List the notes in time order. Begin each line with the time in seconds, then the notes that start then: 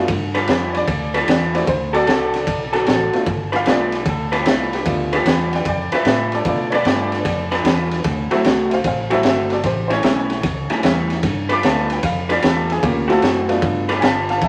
0.08 G2, kick, ride
0.35 G3 D4 F4 B4, snare, ride
0.48 F2 G3 D4 F4 B4, snare, ride
0.73 C#5, snare, ride
0.77 D5
0.87 D2, kick, ride
1.14 G3 D4 F4 B4, snare, ride
1.27 E2 G3 D4 F4 B4 D5, snare, ride
1.54 A3 C4 E4 F#4 D5, snare, ride
1.67 D2 C5, kick, ride
1.93 D3 C4 F#4 A4 D5, snare, ride
2.06 C2 D3 C4 F#4 A4, snare, ride
2.34 snare, ride
2.47 B1, kick, ride
2.73 D3 C4 F#4 A4, snare, ride
2.86 A1 D3 C4 F#4 A4, snare, ride
3.13 A3 B3 D4 F4, snare, ride
3.26 G1, kick, ride
3.52 G3 D4 F4 B4 F5, snare, ride
3.66 B1 G3 A3 B3 D4 F4 B4 D5, snare, ride
3.92 snare, ride
4.06 D2 A4, kick, ride
4.32 G3 D4 F4 B4, snare, ride
4.45 C2 G3 A3 B3 D4 E4 F4 B4, snare, ride
4.73 G4, snare, ride
4.85 D2 A3 B3 D4 F4, kick, ride
5.13 G3 D4 F4 G4 B4, snare, ride
5.25 E2 G3 D4 F4 B4, snare, ride
5.51 D5 F#5, snare, ride
5.55 G5
5.65 F2 D5 G5, kick, ride
5.92 G3 D4 F4 B4 E5, muted fingered electric bass stroke, snare, ride
6.05 A2 G3 D4 F4 B4 E5, snare, ride
6.32 A4 D5, snare, ride
6.45 B2 A3 B3 D4 F4 A4 D5, kick, ride
6.70 G3 D4 F4 B4 C#5, snare, ride
6.74 D5
6.85 G2 G3 A3 B3 D4 F4 G4 B4, snare, ride
7.12 snare, ride
7.25 F2, kick, snare, ride
7.52 G3 D4 F4 B4, snare, ride
7.64 E2 G3 D4 F4 B4, snare, ride
7.91 snare, ride
8.04 D2, kick, snare, ride
8.31 D3 F#3 A3 C4 E4 F#4, snare, ride
8.44 C2 D3 A3 C4 F#4, snare, ride
8.69 E5, snare, ride
8.73 C5 F5
8.84 A1 C5 F5, kick, snare, ride
9.10 D3 F#3 A3 C4 E4 F#4 C5 E5, snare, ride
9.23 G1 D3 A3 C4 F#4 C5 E5, snare, ride
9.50 A4 D5, snare, ride
9.64 A1 G4 C5, kick, snare, ride
9.88 A2 G3 C#4 E4 C5, ride
9.92 C#5, snare
10.03 B1 A2 G3 B3 C#4 E4, snare, ride
10.30 snare, ride
10.43 C#2, kick, snare, ride
10.70 A2 G3 C#4 E4, muted fingered electric bass stroke, snare, ride
10.83 E2 A2 G3 B3 C#4 E4, snare, ride
11.10 snare, ride
11.23 G2, kick, snare, ride
11.49 G3 D4 F4 B4 D6, snare, ride
11.63 D2 G3 A3 B3 D4 F4 B4 A5, snare, ride
11.90 G5, snare, ride
12.03 F2 F5, kick, snare, ride
12.29 G3 D4 F4 B4 D5, snare, ride
12.42 E2 G3 A3 B3 D4 F4 G4 B4, snare, ride
12.46 A4
12.70 G#4, snare, ride
12.83 D2 A#3 C#4 F4 G4, kick, ride
13.08 D3 A3 C4 E4 F4 F#4 A4, snare, ride
13.22 F#2 D3 A3 C4 F#4, snare, ride
13.48 A3 B3 D4 F4, snare, ride
13.62 G2, kick, ride
13.89 G3 D4 F4 B4, snare, ride
14.00 G1 G3 D4 F4 B4 F5 G#5, snare, ride
14.05 A5
14.29 F5 A5, snare, ride
14.41 A1 E5 A5, kick, ride